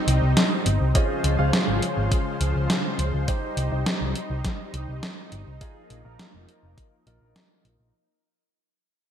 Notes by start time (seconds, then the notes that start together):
Already playing: G3 C4 D#4
0.07 C2, closed hi-hat
0.22 C2
0.37 snare, closed hi-hat
0.66 G1, closed hi-hat
0.80 C2
0.95 C#3 F3 G#3 C#4 F4 G#4 C5 D#5, kick, closed hi-hat
1.24 C#2, closed hi-hat
1.39 C#2 C#4 F4 G#4 C5 F5
1.53 snare, closed hi-hat
1.68 G#1
1.82 closed hi-hat
1.97 G#1
2.12 kick, closed hi-hat
2.41 C#2, closed hi-hat
2.55 C#2
2.70 snare, closed hi-hat
2.99 C#2, closed hi-hat
3.13 C#2
3.28 G3 D#4 G4 C5, kick, closed hi-hat
3.57 C2, closed hi-hat
3.72 C2 D#4 G4 C5
3.86 snare, closed hi-hat
4.01 C2
4.16 closed hi-hat
4.30 C2
4.45 kick, snare, closed hi-hat
4.74 C2, closed hi-hat
4.88 C2
5.03 snare, closed hi-hat
5.32 G1, closed hi-hat
5.47 C2
5.61 F3 A#3 D#4 F4 G#4, kick, closed hi-hat
5.90 A#1, closed hi-hat
6.05 A#1 D#4 F4 A#4
6.19 snare, closed hi-hat
6.34 F1
6.49 closed hi-hat
6.63 F1
6.78 kick, closed hi-hat
7.07 A#1 D#4 F4 A#4, closed hi-hat
7.21 A#1
7.36 snare, closed hi-hat
7.65 A#1, closed hi-hat
7.79 A#1